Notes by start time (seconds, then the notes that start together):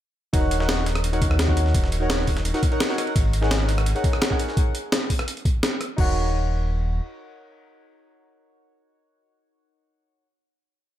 0.33 D#1 D#4 F#4 A#4 C#5 F#5, kick, closed hi-hat, ride
0.51 closed hi-hat, ride
0.59 D#4 F#4 A#4 C#5 F#5, snare
0.69 snare, closed hi-hat, ride
0.78 snare
0.86 snare, closed hi-hat, ride
0.95 cross-stick, closed hi-hat
1.04 closed hi-hat, ride
1.12 D#4 F#4 A#4 C#5 F#5, closed hi-hat
1.22 D#2, kick, closed hi-hat, ride
1.31 cross-stick
1.39 snare, closed hi-hat, ride
1.47 D#4 F#4 A#4 C#5 F#5, kick
1.57 closed hi-hat, ride
1.66 snare
1.74 D#1, kick, closed hi-hat, ride
1.84 snare
1.92 closed hi-hat, ride
2.00 D#4 F#4 A#4 C#5 F#5
2.10 snare, closed hi-hat, ride
2.19 snare
2.27 kick, open hi-hat, ride
2.37 snare, closed hi-hat
2.45 closed hi-hat, ride
2.54 D#4 F#4 A#4 C#5 F#5, snare, closed hi-hat
2.63 kick, closed hi-hat, ride
2.71 D#4 F#4 A#4 C#5 F#5, ride
2.80 snare, closed hi-hat, ride
2.89 D#4 F#4 A#4 C#5 F#5, snare
2.98 cross-stick, closed hi-hat, ride
3.07 ride
3.16 G#1, kick, closed hi-hat, ride
3.33 closed hi-hat, ride
3.41 D#4 G#4 A#4 C#5 F#5, snare
3.51 snare, closed hi-hat, ride
3.60 snare
3.69 snare, closed hi-hat, ride
3.78 cross-stick, closed hi-hat
3.86 closed hi-hat, ride
3.95 D#4 G#4 A#4 C#5 F#5, closed hi-hat
4.04 kick, closed hi-hat, ride
4.13 cross-stick
4.22 snare, closed hi-hat, ride
4.30 D#4 G#4 A#4 C#5 F#5, kick
4.39 closed hi-hat, ride
4.48 snare
4.57 kick, closed hi-hat
4.75 closed hi-hat
4.92 snare, closed hi-hat
5.10 kick, open hi-hat
5.19 cross-stick, closed hi-hat
5.28 closed hi-hat
5.37 closed hi-hat
5.45 kick, closed hi-hat
5.63 snare, closed hi-hat
5.81 cross-stick, closed hi-hat
5.96 D#1 D#4 F#4 A#4 C#5 F#5, kick, crash